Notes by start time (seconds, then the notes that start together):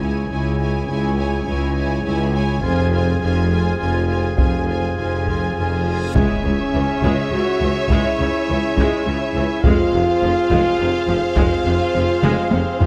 Already playing: C#2 G#3 C#4 E4 G#4 G#5
0.01 E4 C#5 G#5, taiko
0.28 C#2 E4 C#5 G#5
0.58 E4 C#5 G#5
0.88 C#2 E4 C#5 G#5
1.15 E4 C#5 G#5
1.44 C#2 C#5 G#5
1.48 E4
1.75 E4 C#5 G#5
2.03 C#2 E4 C#5 G#5
2.33 E4 C#5 G#5
2.61 F1 F2 G#3 C4 F4 G#4 C5 G#5, taiko
2.92 F4 C5 G#5
3.20 F1 F2 F4 C5 G#5
3.50 F4 C5 G#5
3.77 F1 F2 F4 G#5
3.82 C5
4.08 F4 C5 G#5
4.37 F1 F2 F4 C5 G#5, taiko, reverse cymbal
4.68 F4 C5 G#5
4.97 F1 F2 F4 C5 G#5
5.26 F4 C5 G#5, taiko
5.56 F1 F2 F4 C5 G#5
5.86 F4 C5 G#5
6.14 C#2 G#3 C#4 E4 G#4 C#5 G#5, taiko, impact
6.18 E5
6.44 C#2 C#3
6.74 C#2 E3
7.02 C#2 G#3, taiko
7.31 C#2 C#3 F#4
7.60 C#2 E3
7.89 C#2 G#3 E4, taiko
8.19 C#2 C#3
8.48 C#2 E3
8.77 C#2 G#3, taiko
9.06 C#2 C#3 E4
9.35 C#2 E3
9.63 F1 F2 G#3 C4 F4 G#4 C5 F5, taiko
9.93 F1 F2 C3
10.22 F1 F2 F3
10.50 F1 F2 G#3, taiko
10.79 F1 F2 C3
11.08 F1 F2 F3
11.36 F1 F2 G#3 F4, taiko
11.65 F1 F2 C3
11.94 F1 F2 F3
12.22 F1 F2 G#3, taiko mid
12.51 F1 F2 C3 C4, taiko high
12.79 F1 F2 F3 F4, taiko low